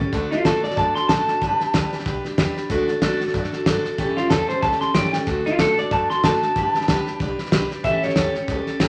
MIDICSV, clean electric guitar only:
0, 0, Header, 1, 2, 480
1, 0, Start_track
1, 0, Key_signature, 2, "major"
1, 0, Tempo, 321543
1, 191, Time_signature, 4, 2, 24, 8
1, 13256, End_track
2, 0, Start_track
2, 0, Title_t, "Clean electric guitar"
2, 0, Program_c, 0, 27
2, 469, Note_on_c, 0, 65, 87
2, 665, Note_off_c, 0, 65, 0
2, 671, Note_on_c, 0, 69, 91
2, 941, Note_off_c, 0, 69, 0
2, 952, Note_on_c, 0, 74, 83
2, 1146, Note_off_c, 0, 74, 0
2, 1158, Note_on_c, 0, 81, 90
2, 1419, Note_off_c, 0, 81, 0
2, 1425, Note_on_c, 0, 84, 92
2, 1613, Note_off_c, 0, 84, 0
2, 1619, Note_on_c, 0, 81, 95
2, 3022, Note_off_c, 0, 81, 0
2, 6222, Note_on_c, 0, 65, 98
2, 6411, Note_off_c, 0, 65, 0
2, 6417, Note_on_c, 0, 69, 89
2, 6692, Note_off_c, 0, 69, 0
2, 6698, Note_on_c, 0, 72, 94
2, 6898, Note_off_c, 0, 72, 0
2, 6904, Note_on_c, 0, 81, 80
2, 7174, Note_off_c, 0, 81, 0
2, 7180, Note_on_c, 0, 84, 91
2, 7380, Note_off_c, 0, 84, 0
2, 7385, Note_on_c, 0, 79, 106
2, 7854, Note_off_c, 0, 79, 0
2, 8151, Note_on_c, 0, 65, 93
2, 8346, Note_off_c, 0, 65, 0
2, 8355, Note_on_c, 0, 69, 88
2, 8623, Note_off_c, 0, 69, 0
2, 8640, Note_on_c, 0, 74, 78
2, 8830, Note_off_c, 0, 74, 0
2, 8847, Note_on_c, 0, 81, 85
2, 9103, Note_off_c, 0, 81, 0
2, 9109, Note_on_c, 0, 84, 85
2, 9305, Note_off_c, 0, 84, 0
2, 9321, Note_on_c, 0, 81, 94
2, 10712, Note_off_c, 0, 81, 0
2, 11711, Note_on_c, 0, 76, 115
2, 11998, Note_off_c, 0, 76, 0
2, 11998, Note_on_c, 0, 73, 115
2, 12924, Note_off_c, 0, 73, 0
2, 13256, End_track
0, 0, End_of_file